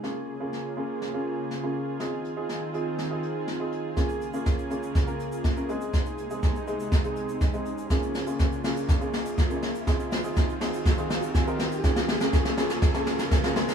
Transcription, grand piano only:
\new Staff \with { instrumentName = "Grand piano" } { \time 4/4 \key bes \minor \tempo 4 = 122 << { r1 | r1 | r1 | r1 |
r1 | r2. aes''16 c'''8. | r1 | } \\ { <bes des' f' aes'>8 r16 <bes des' f' aes'>8 r16 <bes des' f' aes'>8 r16 <bes des' f' aes'>8. r16 <bes des' f' aes'>8 r16 | <c' ees' f' aes'>8 r16 <c' ees' f' aes'>8 r16 <c' ees' f' aes'>8 r16 <c' ees' f' aes'>8. r16 <c' ees' f' aes'>8 r16 | <bes des' f' aes'>8 r16 <bes des' f' aes'>8 r16 <bes des' f' aes'>8 r16 <bes des' f' bes'>8. r16 <bes des' f' bes'>16 <aes c' ees' aes'>8~ | <aes c' ees' aes'>8 r16 <aes c' ees' aes'>8 r16 <aes c' ees' aes'>8 r16 <aes c' ees' aes'>8. r16 <aes c' ees' aes'>8 r16 |
<bes des' f' aes'>8 r16 <bes des' f' aes'>8 r16 <bes des' f' aes'>8 r16 <bes des' f' aes'>8. r16 <bes des' f' aes'>8 r16 | <c' ees' f' aes'>8 r16 <c' ees' f' aes'>8 r16 <c' ees' f' aes'>8 r16 <c' ees' f' aes'>8. r16 <c' ees' f' bes'>8 r16 | <bes des' f' aes'>8 r16 <bes des' f' aes'>8 r16 <bes des' f' aes'>8 r16 <bes des' f' aes'>8. r16 <bes des' f' aes'>16 <aes c' ees' aes'>8 | } >> }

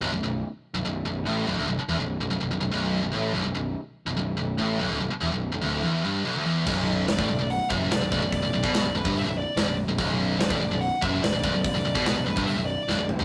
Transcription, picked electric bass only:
\new Staff \with { instrumentName = "Picked electric bass" } { \clef bass \time 4/4 \key b \minor \tempo 4 = 145 b,,,16 b,,,16 b,,,8 r8. b,,,16 b,,,8 b,,,8 a,,8 b,,,16 d,,16 | b,,,16 r16 e,,16 b,,,8 b,,,16 b,,,16 b,,,16 b,,,16 b,,,16 b,,,8. b,,,16 a,,8 | b,,,16 b,,,16 b,,,8 r8. b,,,16 b,,,8 b,,,8 a,,8 b,,,16 d,,16 | b,,,16 r16 e,,16 b,,,8 b,,,16 d,,8 r2 |
b,,,4 b,,,16 a,,16 b,,,16 b,,,8 r16 fis,,8 b,,,16 b,,,16 b,,,16 b,,,16~ | b,,,16 b,,,16 b,,,16 b,,8 b,,,16 b,,,16 g,,8 b,,,8 r16 b,,,16 b,,,8 b,,,16 | b,,,4 b,,,16 a,,16 b,,,16 b,,,8 r16 fis,,8 b,,,16 b,,,16 b,,,16 b,,,16~ | b,,,16 b,,,16 b,,,16 b,,8 b,,,16 b,,,16 g,,8 b,,,8 r16 b,,,16 b,,,8 b,,,16 | }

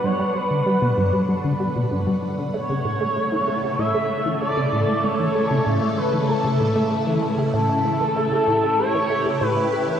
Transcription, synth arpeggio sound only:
\new Staff \with { instrumentName = "Synth arpeggio sound" } { \clef bass \time 4/4 \key a \mixolydian \tempo 4 = 96 g,16 g16 g16 d16 g16 b,16 g,16 g16 g16 d16 g16 b,16 g,16 g16 g16 d16 | a16 cis16 a,16 a16 a16 e16 a16 cis16 a,16 a16 a16 e16 a16 cis16 a,16 a16 | a16 e16 a16 cis16 a,16 a16 a16 e16 a16 cis16 a,16 a16 a16 e16 a16 cis16 | a,16 a16 a16 e16 a16 cis16 a,16 a16 a16 e16 a16 cis16 a,16 a16 a16 e16 | }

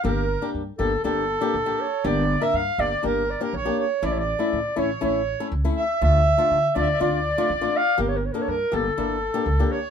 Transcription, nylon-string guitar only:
\new Staff \with { instrumentName = "Nylon-string guitar" } { \time 4/4 \key g \dorian \tempo 4 = 121 <bes d' g'>8 r16 <bes d' g'>16 r8 <bes d' g'>16 r16 <bes d' g'>8 r16 <bes d' g'>16 r16 <bes d' g'>16 r8 | <bes d' g'>8 r16 <bes d' bes'>16 r8 <bes d' g'>16 r16 <bes d' g'>8 r16 <bes d' g'>16 r16 <bes d' g'>16 r8 | <a cis' e'>8 r16 <a cis' e'>16 r8 <a cis' e'>16 r16 <a cis' e'>8 r16 <a cis' e'>16 r16 <a cis' e'>16 r8 | <a d' f'>8 r16 <a d' f'>16 r8 <a d' f'>16 r16 <a d' f'>8 r16 <a d' f'>16 r16 <a d' f'>16 r8 |
<bes d' g'>8 r16 <bes d' a'>16 r8 <bes d' g'>16 r16 <bes d' e'>8 r16 <bes d' g'>16 r16 <bes d' g'>16 r8 | }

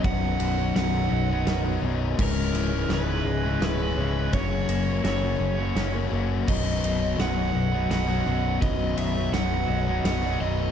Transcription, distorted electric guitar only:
\new Staff \with { instrumentName = "Distorted electric guitar" } { \clef bass \time 3/4 \key b \major \tempo 4 = 84 <b,, fis, b, fis dis'>16 <b, fis dis'>8. <b,, fis, b, fis dis'>16 <b, fis dis'>8 <b, fis dis'>8 <b, fis dis'>16 <fis, b, fis dis'>8 | <cis, gis, cis e gis cis'>16 <cis e gis cis'>8. <cis, gis, cis e gis cis'>16 <cis e gis cis'>8 <cis e gis cis'>8 <cis e gis cis'>16 <cis e gis cis'>8 | <fis, cis fis ais cis' fis'>16 <fis ais cis' fis'>8. <fis, cis fis ais cis' fis'>16 <fis ais cis' fis'>8 <fis ais cis' fis'>8 <fis ais cis' fis'>16 <fis ais cis' fis'>8 | <b,, fis, b, fis dis'>16 <b, fis dis'>8. <b,, fis, b, fis dis'>16 <b, fis dis'>8 <b, fis dis'>8 <b, fis dis'>16 <fis, b, fis dis'>8 |
<b,, fis, b, fis dis'>16 <b, fis dis'>8. <b,, fis, b, fis dis'>16 <b, fis dis'>8 <b, fis dis'>8 <b, fis dis'>16 <fis, b, fis dis'>8 | }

